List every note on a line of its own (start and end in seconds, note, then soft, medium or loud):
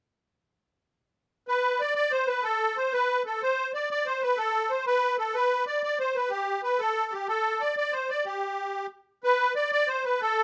1.48 1.81 B4 loud
1.80 1.94 D5 medium
1.95 2.12 D5 loud
2.12 2.28 C5 medium
2.28 2.44 B4 medium
2.44 2.77 A4 loud
2.77 2.93 C5 medium
2.93 3.23 B4 loud
3.26 3.42 A4 medium
3.43 3.72 C5 loud
3.74 3.89 D5 medium
3.91 4.07 D5 loud
4.06 4.22 C5 medium
4.22 4.39 B4 medium
4.38 4.71 A4 medium
4.70 4.85 C5 medium
4.87 5.17 B4 loud
5.19 5.35 A4 medium
5.35 5.65 B4 medium
5.67 5.82 D5 medium
5.83 5.98 D5 medium
6.00 6.16 C5 medium
6.15 6.31 B4 medium
6.31 6.61 G4 medium
6.63 6.80 B4 medium
6.79 7.13 A4 medium
7.12 7.27 G4 medium
7.28 7.62 A4 loud
7.61 7.75 D5 medium
7.77 7.94 D5 medium
7.93 8.10 C5 medium
8.10 8.25 D5 medium
8.26 8.87 G4 medium
9.24 9.54 B4 loud
9.56 9.71 D5 medium
9.72 9.89 D5 loud
9.88 10.05 C5 medium
10.05 10.21 B4 medium
10.21 10.44 A4 loud